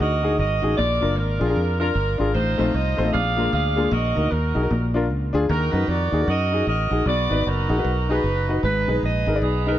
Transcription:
0.00 D2 F#4 A#4 D#5
0.22 D#4 F#4 G#4
0.38 G#1 F#4 A#4 D#5
0.62 A1 D#4 F#4 G#4
0.77 A#1 A#2 F4 A#4 D5
1.01 F#1 D4 F4 A#4
1.17 G#1 D4 F4 A#4
1.39 A#1 D4 F4 G#4
1.48 D4 F4 G#4
1.56 F2
1.80 D4 F4 A#4
1.95 G1
2.18 G#1 D4 F4 G#4 A#4
2.34 A1 A2 D#4 F4 C5
2.58 A#1 A3 C4 D#4 F4 C5
2.74 C2 C5 D#5
2.97 A1 A3 C4 D#4 F4 C5
3.05 A3 C4 D#4 F4 D#5
3.13 A#1 A#2 G#4 D5 F5
3.36 G#3 A#3 D4 F4 A#4
3.53 D2 G#4 D5 F5
3.76 G#3 A#3 D4 F4 G#4
3.91 A#1 A#2 F#4 A#4 D#5
4.15 D2 D#4 F#4 A#4
4.31 D#2 D#4 F#4 A#4
4.54 B1 D#4 F#4 G#4
4.62 D#4 F#4 A#4
4.71 A#1 A#2
4.94 D4 F4 A#4
5.10 C#2
5.33 D2 D4 F4 G#4
5.49 D#2 D#3 D#4 F#4 A#4
5.72 F#2 D#4 F#4 A#4 B4
5.88 F2 F#4 A#4 D5
6.12 D#2 D#4 F#4 G#4
6.19 D#4 F#4 A#4
6.27 F#2 F#4 A#4 D#5
6.52 D#4 F#4 G#4
6.67 A1 F#4 A#4 D#5
6.90 A#1 D#4 F#4 G#4
7.06 B1 B2 F#4 B4 D5
7.30 G#1 D#4 F#4 B4
7.46 F#1 D#4 F#4 A#4
7.68 A#1 D#4 F#4 G#4
7.78 D#4 F#4 B4
7.84 B1
8.09 D#4 F#4 G#4 B4
8.23 F#1
8.48 D#4 F#4 B4
8.63 G#1 G#2 D#4 G#4 B4
8.88 B1 D#4 G#4 B4
9.03 A#1 G#4 B4 D#5
9.26 G#1 D#4 G#4 A#4
9.34 D#4 G#4 D5
9.42 B1 B3 D#4 G#4
9.66 D#4 G#4 A#4 B4

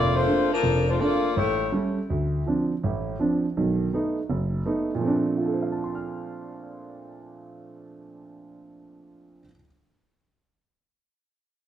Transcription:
Already playing: F1 A2 A#3 F4 A4 D5
0.16 A#3 F4 A4 C5
0.27 A3 A#3 D4
0.52 F3 D4 A4 A#4
0.63 F1
0.89 A3 D4 F4 C5
1.00 A3 A#3 D4 F4 A4 D5
1.36 A1 A3 E4 G4 C#5
1.72 G3 A3 C#4
2.10 D2
2.46 F3 C4 D4
2.83 A1 A2
3.19 F3 C4 D4
3.57 B1 D#3
3.93 A3 B3 D#4
4.30 F#1
4.65 A3 B3 D#4
4.95 A#2 F3
5.01 A3 C4
5.07 D4
5.38 F4
5.46 A4
5.53 C5
5.62 F5
5.72 A5
5.84 C6
5.95 F6

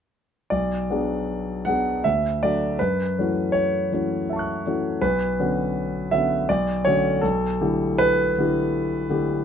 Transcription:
0.50 B1 D5
0.90 F#3 B3 D4 G#4
1.65 F#3 B3 D4 G#4 F#5
2.04 D2 E5
2.43 F#3 A3 D4 F#4 D5
2.79 F#2 B4
3.19 E3 A3 C#4 F#4
3.52 C#5
3.92 E3 A3 C#4 F#4
4.30 E5 A5
4.36 C#6 F#6
4.66 E3 A3 C#4 F#4
5.01 B1 B4
5.39 D3 B3 C#4 F#4
6.11 D3 B3 C#4 F#4 E5
6.49 B1 D5
6.85 D3 A3 C#4 F#4 C#5
7.21 B1 A4
7.61 D3 A3 E4 G4
7.98 B4
8.38 D3 A3 E4 G4
9.09 D3 A3 E4 G4

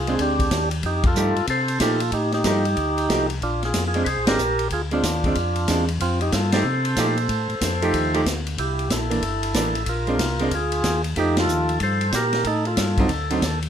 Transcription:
Already playing: C2 F4 G#4
0.07 G#3 C4 D4, ride
0.18 D2 D4 G4, kick, ride
0.39 kick, ride
0.51 D#2, kick, snare, hi-hat pedal, ride
0.71 ride
0.83 F2 D#4 G4, kick, ride
1.03 F4, kick, ride
1.07 A4
1.15 G2 F3 A3 D#4 G4, hi-hat pedal
1.36 G2, ride
1.47 C3 A4 C5, kick, ride
1.68 ride
1.80 A#2 F3 A3 D#4 F4 G4 A4, kick, snare, hi-hat pedal, ride
2.00 ride
2.12 A2 D#4 G4, kick, ride
2.32 D#4 G4, snare, ride
2.44 G2 F3 A3 D#4 G4, kick, snare, hi-hat pedal, ride
2.65 ride
2.77 D2, kick, ride
2.98 ride
3.09 C2 F3 A3 D#4 G4, kick, snare, hi-hat pedal, ride
3.30 ride
3.42 A#1 D4 F4, kick, ride
3.63 F4 G#4, snare, ride
3.74 F2, kick, snare, hi-hat pedal, ride
3.88 F4 G#4
3.94 G#3 C4 D4, ride
4.05 C2 G#4 B4 C5, kick, ride
4.17 A#1
4.27 G#1 G#3 C4 D4 G4 A#4, snare, ride
4.39 A#1, hi-hat pedal
4.59 ride
4.70 D2 F4 G#4, kick, ride
4.91 G#3 C4 D4 F4, ride
5.03 D#2, kick, snare, hi-hat pedal, ride
5.24 G#3 C4 D4, kick, ride
5.35 F2, kick, ride
5.56 ride
5.68 E2 G#3 C4 D4, kick, snare, hi-hat pedal, ride
5.88 ride
6.00 F2 C4 F4, kick, ride
6.21 D#4 G4, ride
6.32 G2 F4 A4, kick, snare, hi-hat pedal, ride
6.52 F3 A3 D#4 G4 A4 C5, snare, ride
6.64 C3
6.85 ride
6.96 A#2 F3 A3 D#4 G4, kick, snare, hi-hat pedal, ride
7.17 ride
7.29 A2, kick, ride
7.49 A2, ride
7.61 F2, kick, snare, hi-hat pedal, ride
7.82 F3 A3 D#4 G4, ride
7.93 D#2, kick, ride
8.14 F3 A3 D#4 G4, ride
8.26 D2, kick, snare, hi-hat pedal, ride
8.47 ride
8.58 C2 E4 G4, kick, ride
8.79 ride
8.90 A#1 E4 A4, kick, snare, hi-hat pedal, ride
9.10 E3 A#3 D4, ride
9.22 G1, kick, ride
9.43 ride
9.54 A1 E3 A#3 D4, kick, snare, hi-hat pedal, ride
9.75 ride
9.86 A#1 F4 A#4, kick, ride
10.07 G#3 C4 D4, ride
10.19 C2, kick, snare, hi-hat pedal, ride
10.39 G#3 C4 D4, ride
10.51 D2 F4, kick, ride
10.55 G#4
10.72 ride
10.83 D#2, kick, snare, hi-hat pedal, ride
11.04 ride
11.16 F2 F3 A3 D#4 G4, kick, ride
11.37 F4 A4, snare, ride
11.47 D#2, hi-hat pedal
11.69 ride
11.80 G2 A4 C5, kick, ride
12.01 ride
12.12 A#2 G4 A#4, kick, snare, hi-hat pedal, ride
12.33 snare, ride
12.44 A2 D#4 A4, kick, ride
12.65 F4 A4, ride
12.77 G2, kick, snare, hi-hat pedal, ride
12.97 D3 F#3 C4 D#4, kick, ride
13.09 D2, ride
13.30 D3 F#3 C4 D#4, ride
13.42 D#2, kick, snare, hi-hat pedal, ride
13.62 ride

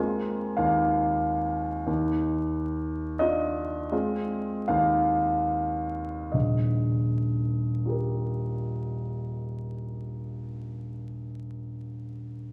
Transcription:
Already playing: G#3 A#3 C4 F4 G#5
0.57 D#2 F5
1.86 D#2
3.19 D4 F4 D#5
3.92 G#3 C4 F4
4.68 D#2 F5
6.32 D#1 A#1 D#5
7.86 F4 G4 A#4

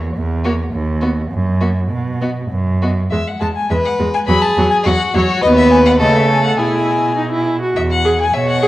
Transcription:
0.16 E2
0.44 A#3 F#4 C#5
0.73 D#2
1.01 B3 F#4 D#5
1.31 F#2
1.61 A#3 F#4 E5
1.91 B2
2.21 B3 F#4 D#5
2.51 F#2
2.82 B3 F#4 D#5
3.11 E2 G#3 E5
3.27 F#5
3.40 E2 G#3 A5
3.56 G#5
3.71 E2 G#3 B4 E5
3.85 F#5
3.99 E2 G#3
4.14 G#5
4.27 E2 F#3 G#4 B5
4.41 A5
4.57 E2 F#3
4.70 G#5
4.84 E2 F#3 F#4 F#5
5.14 E2 F#3 C#5
5.42 D#2 B3 B4 D#5
5.57 E5
5.71 G#5
5.85 F#5
6.00 C#3 A3 A4 D#5
6.15 E5
6.29 G#5
6.43 F#5
6.58 B2 E4 G#4 G#5
7.16 D#4
7.31 E4
7.61 F#4
7.76 E2 E5
7.91 F#5
8.05 G#4
8.21 G#5
8.34 B2 C#5 E5
8.49 F#5
8.62 G#4

